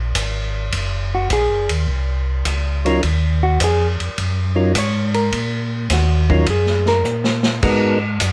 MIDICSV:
0, 0, Header, 1, 5, 480
1, 0, Start_track
1, 0, Tempo, 575209
1, 607, Time_signature, 4, 2, 24, 8
1, 6945, End_track
2, 0, Start_track
2, 0, Title_t, "Hollow-body jazz guitar"
2, 0, Program_c, 0, 26
2, 956, Note_on_c, 0, 66, 66
2, 1092, Note_off_c, 0, 66, 0
2, 1109, Note_on_c, 0, 68, 81
2, 1419, Note_off_c, 0, 68, 0
2, 2863, Note_on_c, 0, 66, 83
2, 3005, Note_off_c, 0, 66, 0
2, 3037, Note_on_c, 0, 68, 80
2, 3227, Note_off_c, 0, 68, 0
2, 3992, Note_on_c, 0, 73, 77
2, 4291, Note_off_c, 0, 73, 0
2, 4294, Note_on_c, 0, 70, 70
2, 4891, Note_off_c, 0, 70, 0
2, 4950, Note_on_c, 0, 66, 63
2, 5385, Note_off_c, 0, 66, 0
2, 5426, Note_on_c, 0, 68, 65
2, 5738, Note_off_c, 0, 68, 0
2, 5742, Note_on_c, 0, 70, 88
2, 6335, Note_off_c, 0, 70, 0
2, 6945, End_track
3, 0, Start_track
3, 0, Title_t, "Tonewheel organ"
3, 0, Program_c, 1, 16
3, 2378, Note_on_c, 1, 54, 73
3, 2381, Note_on_c, 1, 61, 64
3, 2382, Note_on_c, 1, 65, 63
3, 2384, Note_on_c, 1, 63, 63
3, 2389, Note_on_c, 1, 70, 77
3, 2512, Note_off_c, 1, 54, 0
3, 2514, Note_off_c, 1, 61, 0
3, 2514, Note_off_c, 1, 65, 0
3, 2515, Note_off_c, 1, 63, 0
3, 2518, Note_off_c, 1, 70, 0
3, 3801, Note_on_c, 1, 61, 60
3, 3803, Note_on_c, 1, 54, 64
3, 3803, Note_on_c, 1, 63, 55
3, 3807, Note_on_c, 1, 65, 61
3, 3807, Note_on_c, 1, 70, 73
3, 3943, Note_off_c, 1, 61, 0
3, 3944, Note_off_c, 1, 54, 0
3, 3945, Note_off_c, 1, 63, 0
3, 3947, Note_off_c, 1, 65, 0
3, 3947, Note_off_c, 1, 70, 0
3, 5253, Note_on_c, 1, 54, 64
3, 5254, Note_on_c, 1, 61, 55
3, 5260, Note_on_c, 1, 63, 54
3, 5261, Note_on_c, 1, 65, 57
3, 5265, Note_on_c, 1, 70, 69
3, 5389, Note_off_c, 1, 54, 0
3, 5390, Note_off_c, 1, 61, 0
3, 5393, Note_off_c, 1, 63, 0
3, 5394, Note_off_c, 1, 65, 0
3, 5396, Note_off_c, 1, 70, 0
3, 6363, Note_on_c, 1, 56, 59
3, 6365, Note_on_c, 1, 63, 54
3, 6367, Note_on_c, 1, 59, 55
3, 6369, Note_on_c, 1, 66, 58
3, 6371, Note_on_c, 1, 70, 68
3, 6663, Note_off_c, 1, 56, 0
3, 6664, Note_off_c, 1, 63, 0
3, 6665, Note_off_c, 1, 59, 0
3, 6666, Note_off_c, 1, 66, 0
3, 6667, Note_off_c, 1, 70, 0
3, 6945, End_track
4, 0, Start_track
4, 0, Title_t, "Tonewheel organ"
4, 0, Program_c, 2, 16
4, 0, Note_on_c, 2, 34, 79
4, 110, Note_off_c, 2, 34, 0
4, 124, Note_on_c, 2, 32, 87
4, 591, Note_off_c, 2, 32, 0
4, 606, Note_on_c, 2, 30, 84
4, 1072, Note_off_c, 2, 30, 0
4, 1087, Note_on_c, 2, 34, 89
4, 1242, Note_off_c, 2, 34, 0
4, 1249, Note_on_c, 2, 30, 50
4, 1408, Note_off_c, 2, 30, 0
4, 1411, Note_on_c, 2, 39, 60
4, 1558, Note_off_c, 2, 39, 0
4, 1567, Note_on_c, 2, 36, 77
4, 2033, Note_off_c, 2, 36, 0
4, 2046, Note_on_c, 2, 37, 82
4, 2512, Note_off_c, 2, 37, 0
4, 2528, Note_on_c, 2, 39, 77
4, 2993, Note_off_c, 2, 39, 0
4, 3007, Note_on_c, 2, 41, 89
4, 3315, Note_off_c, 2, 41, 0
4, 3338, Note_on_c, 2, 41, 41
4, 3412, Note_off_c, 2, 41, 0
4, 3487, Note_on_c, 2, 42, 82
4, 3953, Note_off_c, 2, 42, 0
4, 3964, Note_on_c, 2, 44, 92
4, 4431, Note_off_c, 2, 44, 0
4, 4444, Note_on_c, 2, 46, 78
4, 4911, Note_off_c, 2, 46, 0
4, 4921, Note_on_c, 2, 39, 93
4, 5389, Note_off_c, 2, 39, 0
4, 5401, Note_on_c, 2, 42, 76
4, 5869, Note_off_c, 2, 42, 0
4, 5879, Note_on_c, 2, 46, 79
4, 6348, Note_off_c, 2, 46, 0
4, 6363, Note_on_c, 2, 44, 81
4, 6830, Note_off_c, 2, 44, 0
4, 6842, Note_on_c, 2, 42, 87
4, 6945, Note_off_c, 2, 42, 0
4, 6945, End_track
5, 0, Start_track
5, 0, Title_t, "Drums"
5, 124, Note_on_c, 9, 44, 48
5, 124, Note_on_c, 9, 51, 67
5, 129, Note_on_c, 9, 36, 19
5, 207, Note_off_c, 9, 44, 0
5, 207, Note_off_c, 9, 51, 0
5, 212, Note_off_c, 9, 36, 0
5, 604, Note_on_c, 9, 51, 64
5, 608, Note_on_c, 9, 36, 25
5, 687, Note_off_c, 9, 51, 0
5, 692, Note_off_c, 9, 36, 0
5, 1084, Note_on_c, 9, 44, 47
5, 1084, Note_on_c, 9, 51, 61
5, 1088, Note_on_c, 9, 36, 25
5, 1168, Note_off_c, 9, 44, 0
5, 1168, Note_off_c, 9, 51, 0
5, 1172, Note_off_c, 9, 36, 0
5, 1412, Note_on_c, 9, 51, 61
5, 1495, Note_off_c, 9, 51, 0
5, 1570, Note_on_c, 9, 36, 16
5, 1653, Note_off_c, 9, 36, 0
5, 2045, Note_on_c, 9, 44, 51
5, 2045, Note_on_c, 9, 51, 64
5, 2049, Note_on_c, 9, 36, 17
5, 2129, Note_off_c, 9, 44, 0
5, 2129, Note_off_c, 9, 51, 0
5, 2132, Note_off_c, 9, 36, 0
5, 2384, Note_on_c, 9, 51, 40
5, 2467, Note_off_c, 9, 51, 0
5, 2526, Note_on_c, 9, 51, 56
5, 2530, Note_on_c, 9, 36, 26
5, 2610, Note_off_c, 9, 51, 0
5, 2613, Note_off_c, 9, 36, 0
5, 3004, Note_on_c, 9, 44, 62
5, 3004, Note_on_c, 9, 51, 70
5, 3007, Note_on_c, 9, 36, 21
5, 3087, Note_off_c, 9, 44, 0
5, 3087, Note_off_c, 9, 51, 0
5, 3091, Note_off_c, 9, 36, 0
5, 3337, Note_on_c, 9, 51, 41
5, 3421, Note_off_c, 9, 51, 0
5, 3486, Note_on_c, 9, 51, 51
5, 3488, Note_on_c, 9, 36, 17
5, 3569, Note_off_c, 9, 51, 0
5, 3572, Note_off_c, 9, 36, 0
5, 3963, Note_on_c, 9, 44, 60
5, 3963, Note_on_c, 9, 51, 68
5, 3966, Note_on_c, 9, 36, 21
5, 4046, Note_off_c, 9, 44, 0
5, 4046, Note_off_c, 9, 51, 0
5, 4049, Note_off_c, 9, 36, 0
5, 4291, Note_on_c, 9, 51, 42
5, 4375, Note_off_c, 9, 51, 0
5, 4443, Note_on_c, 9, 51, 54
5, 4445, Note_on_c, 9, 36, 17
5, 4526, Note_off_c, 9, 51, 0
5, 4529, Note_off_c, 9, 36, 0
5, 4921, Note_on_c, 9, 44, 50
5, 4921, Note_on_c, 9, 51, 66
5, 4923, Note_on_c, 9, 36, 25
5, 4924, Note_on_c, 9, 38, 36
5, 5004, Note_off_c, 9, 44, 0
5, 5004, Note_off_c, 9, 51, 0
5, 5007, Note_off_c, 9, 36, 0
5, 5007, Note_off_c, 9, 38, 0
5, 5255, Note_on_c, 9, 36, 51
5, 5339, Note_off_c, 9, 36, 0
5, 5394, Note_on_c, 9, 51, 58
5, 5403, Note_on_c, 9, 36, 22
5, 5478, Note_off_c, 9, 51, 0
5, 5486, Note_off_c, 9, 36, 0
5, 5560, Note_on_c, 9, 38, 28
5, 5644, Note_off_c, 9, 38, 0
5, 5722, Note_on_c, 9, 38, 42
5, 5806, Note_off_c, 9, 38, 0
5, 5879, Note_on_c, 9, 44, 52
5, 5963, Note_off_c, 9, 44, 0
5, 6042, Note_on_c, 9, 38, 55
5, 6126, Note_off_c, 9, 38, 0
5, 6201, Note_on_c, 9, 38, 68
5, 6284, Note_off_c, 9, 38, 0
5, 6363, Note_on_c, 9, 49, 68
5, 6366, Note_on_c, 9, 36, 71
5, 6447, Note_off_c, 9, 49, 0
5, 6450, Note_off_c, 9, 36, 0
5, 6842, Note_on_c, 9, 44, 62
5, 6842, Note_on_c, 9, 51, 69
5, 6844, Note_on_c, 9, 36, 21
5, 6925, Note_off_c, 9, 44, 0
5, 6925, Note_off_c, 9, 51, 0
5, 6927, Note_off_c, 9, 36, 0
5, 6945, End_track
0, 0, End_of_file